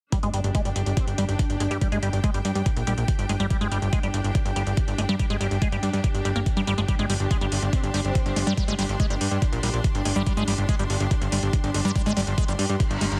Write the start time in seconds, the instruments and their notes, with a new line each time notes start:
0.12 acid bass G3, string section D4, kick, closed hi-hat
0.23 analog synth bass G1, acid bass G#3, closed hi-hat
0.34 analog synth bass G1, acid bass G3, closed hi-hat
0.42 analog synth bass G1, string section G4, closed hi-hat
0.54 acid bass G#3, string section G5, kick, closed hi-hat
0.65 analog synth bass G1, acid bass G3, closed hi-hat
0.76 analog synth bass G1, closed hi-hat
0.86 analog synth bass G1, closed hi-hat
0.97 wobble bass C4, kick, closed hi-hat
1.08 analog synth bass G1, closed hi-hat
1.18 analog synth bass G1, acid bass G3, closed hi-hat
1.29 analog synth bass G1, wobble bass D4, closed hi-hat
1.39 kick, closed hi-hat
1.50 analog synth bass G1, closed hi-hat
1.60 analog synth bass G1, acid bass G#3, closed hi-hat
1.71 analog synth bass G2, acid bass G3, closed hi-hat
1.81 acid bass G3, kick, closed hi-hat
1.92 analog synth bass G1, acid bass G#3, closed hi-hat
2.03 analog synth bass G1, acid bass G3, closed hi-hat
2.13 analog synth bass G1, closed hi-hat
2.24 acid bass G#3, kick, closed hi-hat
2.34 analog synth bass G1, acid bass G3, closed hi-hat
2.45 analog synth bass G2, closed hi-hat
2.55 analog synth bass G2, closed hi-hat
2.66 kick, closed hi-hat
2.77 analog synth bass A#1, closed hi-hat
2.87 analog synth bass A#1, acid bass G3, closed hi-hat
2.98 analog synth bass A#1, closed hi-hat
3.08 kick, closed hi-hat
3.19 analog synth bass G1, closed hi-hat
3.29 analog synth bass G1, acid bass G#3, closed hi-hat
3.40 analog synth bass G1, acid bass G3, closed hi-hat
3.50 acid bass G3, kick, closed hi-hat
3.61 analog synth bass G1, acid bass G#3, closed hi-hat
3.72 analog synth bass G1, acid bass G3, closed hi-hat
3.82 analog synth bass G1, closed hi-hat
3.93 acid bass G#3, kick, closed hi-hat
4.03 analog synth bass G1, acid bass G3, closed hi-hat
4.14 analog synth bass G1, closed hi-hat
4.24 analog synth bass G1, closed hi-hat
4.35 kick, closed hi-hat
4.46 analog synth bass G1, closed hi-hat
4.56 analog synth bass G1, acid bass G3, closed hi-hat
4.67 analog synth bass G1, closed hi-hat
4.77 kick, closed hi-hat
4.88 analog synth bass G1, closed hi-hat
4.98 analog synth bass G1, acid bass G#3, closed hi-hat
5.09 analog synth bass G2, acid bass G3, closed hi-hat
5.19 acid bass G3, kick, closed hi-hat
5.30 analog synth bass G1, acid bass G#3, closed hi-hat
5.41 analog synth bass G1, acid bass G3, closed hi-hat
5.51 analog synth bass G1, closed hi-hat
5.62 acid bass G#3, kick, closed hi-hat
5.72 analog synth bass G1, acid bass G3, closed hi-hat
5.83 analog synth bass G2, closed hi-hat
5.93 analog synth bass G2, closed hi-hat
6.04 kick, closed hi-hat
6.15 analog synth bass G1, closed hi-hat
6.25 analog synth bass G1, acid bass G3, closed hi-hat
6.36 analog synth bass G1, acid bass A#3, closed hi-hat
6.46 kick, closed hi-hat
6.57 analog synth bass G2, acid bass G3, closed hi-hat
6.67 analog synth bass G1, acid bass G3, closed hi-hat
6.78 analog synth bass G1, acid bass G#3, closed hi-hat
6.88 acid bass G3, kick, closed hi-hat
6.99 analog synth bass G1, acid bass G#3, closed hi-hat
7.10 analog synth bass G1, acid bass G3, open hi-hat
7.20 analog synth bass G1, closed hi-hat
7.30 acid bass G#3, string section C6, kick, closed hi-hat
7.41 analog synth bass G1, acid bass G3, closed hi-hat
7.52 analog synth bass G1, open hi-hat
7.62 analog synth bass G1, closed hi-hat
7.73 wobble bass C4, kick, closed hi-hat
7.84 analog synth bass G1, closed hi-hat
7.94 analog synth bass G1, acid bass G3, open hi-hat
8.05 analog synth bass G1, wobble bass C4, closed hi-hat
8.15 kick, closed hi-hat
8.26 analog synth bass G1, closed hi-hat
8.36 analog synth bass G1, acid bass G#3, open hi-hat
8.47 analog synth bass G2, acid bass G3, closed hi-hat
8.57 acid bass G3, kick, closed hi-hat
8.68 analog synth bass G1, acid bass G#3, closed hi-hat
8.79 analog synth bass G1, acid bass G3, open hi-hat
8.89 analog synth bass G1, closed hi-hat
9.00 acid bass G#3, kick, closed hi-hat
9.10 analog synth bass G1, acid bass G3, closed hi-hat
9.21 analog synth bass G2, open hi-hat
9.31 analog synth bass G2, closed hi-hat
9.42 kick, closed hi-hat
9.53 analog synth bass A#1, closed hi-hat
9.63 analog synth bass A#1, acid bass G3, open hi-hat
9.74 analog synth bass A#1, closed hi-hat
9.84 kick, closed hi-hat
9.95 analog synth bass G1, closed hi-hat
10.05 analog synth bass G1, acid bass G#3, open hi-hat
10.16 analog synth bass G1, acid bass G3, closed hi-hat
10.27 acid bass G3, kick, closed hi-hat
10.37 analog synth bass G1, acid bass G#3, closed hi-hat
10.48 analog synth bass G1, acid bass G3, open hi-hat
10.58 analog synth bass G1, closed hi-hat
10.69 acid bass G#3, kick, closed hi-hat
10.79 analog synth bass G1, acid bass G3, closed hi-hat
10.90 analog synth bass G1, open hi-hat
11.00 analog synth bass G1, closed hi-hat
11.11 kick, closed hi-hat
11.22 analog synth bass G1, closed hi-hat
11.32 analog synth bass G1, acid bass G3, open hi-hat
11.43 analog synth bass G1, closed hi-hat
11.53 kick, closed hi-hat
11.64 analog synth bass G1, closed hi-hat
11.74 analog synth bass G1, acid bass G#3, open hi-hat
11.85 analog synth bass G2, acid bass G3, closed hi-hat
11.96 acid bass G3, kick, closed hi-hat
12.06 analog synth bass G1, acid bass G#3, closed hi-hat
12.17 analog synth bass G1, acid bass G3, open hi-hat
12.27 analog synth bass G1, closed hi-hat
12.38 acid bass G#3, kick, closed hi-hat
12.48 analog synth bass G1, acid bass G3, closed hi-hat
12.59 analog synth bass G2, open hi-hat
12.69 analog synth bass G2, closed hi-hat
12.80 kick, closed hi-hat, reverse cymbal
12.91 analog synth bass G1, closed hi-hat
13.01 analog synth bass G1, acid bass G#3, open hi-hat
13.12 analog synth bass G1, closed hi-hat